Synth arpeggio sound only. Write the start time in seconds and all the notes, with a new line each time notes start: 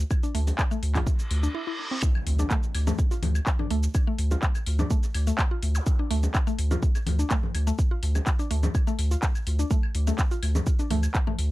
0.23 D4
0.35 A3
0.71 A3
0.95 F4
1.43 D4
1.55 E4
1.67 E4
1.91 C4
2.39 D4
2.51 A3
2.87 A3
3.11 F4
3.59 D4
3.71 A3
4.07 A3
4.31 F4
4.79 D4
4.91 A3
5.27 A3
5.51 F4
5.99 D4
6.11 A3
6.47 A3
6.71 F4
7.19 D4
7.31 A3
7.67 A3
7.91 F4
8.39 D4
8.51 A3
8.87 A3
9.11 F4
9.59 D4
9.71 A3
10.07 A3
10.31 F4
10.79 D4
10.91 A3
11.27 A3